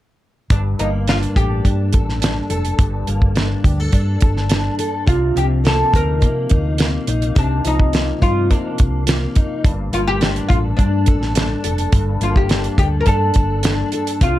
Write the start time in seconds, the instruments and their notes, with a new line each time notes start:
0.50 fingered electric bass G1, steel-string acoustic guitar G2, oud D4, kick, closed hi-hat
0.79 fingered electric bass G1, steel-string acoustic guitar A#3, oud D#4, closed hi-hat
1.07 steel-string acoustic guitar D4, oud F4, snare, closed hi-hat
1.23 closed hi-hat
1.36 fingered electric bass A1, oud G4, steel-string acoustic guitar A4, kick, closed hi-hat
1.64 fingered electric bass G2, steel-string acoustic guitar D4, kick, closed hi-hat
1.93 fingered electric bass A1, steel-string acoustic guitar A4, kick, closed hi-hat
2.09 snare
2.22 steel-string acoustic guitar D4, snare, closed hi-hat
2.50 fingered electric bass F1, steel-string acoustic guitar A4, closed hi-hat
2.65 closed hi-hat
2.79 fingered electric bass G1, steel-string acoustic guitar G2, kick, closed hi-hat
3.07 fingered electric bass G1, steel-string acoustic guitar A#3, closed hi-hat
3.22 kick
3.35 steel-string acoustic guitar D4, snare, closed hi-hat
3.64 fingered electric bass D2, steel-string acoustic guitar G4, kick, closed hi-hat
3.80 steel-string acoustic guitar A4
3.92 fingered electric bass G2, steel-string acoustic guitar D4, kick, closed hi-hat
4.21 fingered electric bass G1, steel-string acoustic guitar A4, kick, closed hi-hat
4.37 snare
4.49 steel-string acoustic guitar D4, snare, closed hi-hat
4.79 steel-string acoustic guitar A4, closed hi-hat
5.06 fingered electric bass C2, steel-string acoustic guitar C3, oud F4, kick, closed hi-hat
5.36 fingered electric bass C2, steel-string acoustic guitar F3, oud G4, closed hi-hat
5.64 steel-string acoustic guitar A#3, oud A4, snare, closed hi-hat
5.93 fingered electric bass D2, steel-string acoustic guitar D#4, oud A#4, kick, closed hi-hat
6.21 fingered electric bass C3, steel-string acoustic guitar A#3, kick, closed hi-hat
6.49 fingered electric bass D2, steel-string acoustic guitar D#4, kick, closed hi-hat
6.78 steel-string acoustic guitar A#3, snare, closed hi-hat
7.07 fingered electric bass A#1, steel-string acoustic guitar D#4, closed hi-hat
7.22 closed hi-hat
7.35 fingered electric bass C2, steel-string acoustic guitar C3, oud D4, kick, closed hi-hat
7.64 fingered electric bass C2, steel-string acoustic guitar F3, oud D#4, closed hi-hat
7.80 kick
7.93 steel-string acoustic guitar A#3, snare, closed hi-hat
8.21 fingered electric bass G2, steel-string acoustic guitar D#4, oud F4, kick, closed hi-hat
8.50 fingered electric bass C3, steel-string acoustic guitar A#3, oud D4, kick, closed hi-hat
8.78 fingered electric bass C2, kick, closed hi-hat
9.07 steel-string acoustic guitar A#3, snare, closed hi-hat
9.35 steel-string acoustic guitar D#4, kick, closed hi-hat
9.64 fingered electric bass G1, steel-string acoustic guitar G2, kick, closed hi-hat
9.93 fingered electric bass G1, steel-string acoustic guitar A#3, oud F4, closed hi-hat
10.08 oud G4
10.21 steel-string acoustic guitar D4, snare, closed hi-hat
10.36 closed hi-hat
10.48 fingered electric bass A1, oud F4, steel-string acoustic guitar A4, kick, closed hi-hat
10.77 fingered electric bass G2, oud D4, steel-string acoustic guitar D4, kick, closed hi-hat
11.06 fingered electric bass A1, steel-string acoustic guitar A4, kick, closed hi-hat
11.22 snare
11.35 steel-string acoustic guitar D4, snare, closed hi-hat
11.64 fingered electric bass F1, steel-string acoustic guitar A4, closed hi-hat
11.78 closed hi-hat
11.92 fingered electric bass G1, steel-string acoustic guitar G2, kick, closed hi-hat
12.21 fingered electric bass G1, steel-string acoustic guitar A#3, oud F4, closed hi-hat
12.36 oud G4, kick
12.49 steel-string acoustic guitar D4, snare, closed hi-hat
12.64 closed hi-hat
12.78 fingered electric bass D2, oud G4, steel-string acoustic guitar A4, kick, closed hi-hat
13.01 oud A#4
13.06 fingered electric bass G2, steel-string acoustic guitar D4, oud A4, kick, closed hi-hat
13.34 fingered electric bass G1, steel-string acoustic guitar A4, kick, closed hi-hat
13.63 steel-string acoustic guitar D4, snare, closed hi-hat
13.92 steel-string acoustic guitar A4, closed hi-hat
14.07 closed hi-hat
14.21 fingered electric bass C2, steel-string acoustic guitar C3, oud F4, kick, closed hi-hat